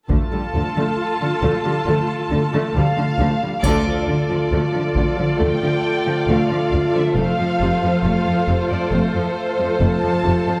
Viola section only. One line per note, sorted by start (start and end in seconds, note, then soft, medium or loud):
0.11 0.31 A3 soft
0.11 3.40 F4 soft
0.33 0.41 G3 soft
0.55 0.63 A3 soft
0.78 0.98 A3 soft
1.22 1.30 A3 soft
1.42 1.63 A3 soft
1.65 1.73 G3 soft
1.87 2.08 A3 soft
2.31 2.39 A3 soft
2.54 2.74 A3 medium
2.76 2.84 G3 soft
2.98 3.06 A3 soft
3.20 3.40 A3 soft
3.43 3.51 G3 soft
3.64 3.84 A3 medium
3.64 7.12 F4 soft
3.86 3.94 F3 soft
4.08 4.16 D3 soft
4.29 4.37 F3 soft
4.51 4.72 A3 soft
4.72 4.80 F3 soft
4.95 5.03 D3 soft
5.16 5.24 F3 soft
5.38 5.59 A3 soft
5.61 5.69 F3 soft
6.05 6.13 F3 soft
6.28 6.48 A3 soft
6.49 6.57 F3 soft
6.72 6.80 D3 soft
6.94 7.02 F3 soft
7.16 7.37 A3 soft
7.16 10.60 F4 soft
7.39 7.47 F3 soft
7.62 7.70 C3 soft
7.84 7.92 F3 soft
8.05 8.25 A3 soft
8.28 8.36 F3 soft
8.49 8.57 C3 soft
8.72 8.80 F3 soft
8.93 9.13 A3 soft
9.16 9.24 F3 soft
9.60 9.68 F3 soft
9.82 10.02 A3 soft
10.03 10.11 F3 soft
10.25 10.33 C3 soft
10.48 10.56 F3 soft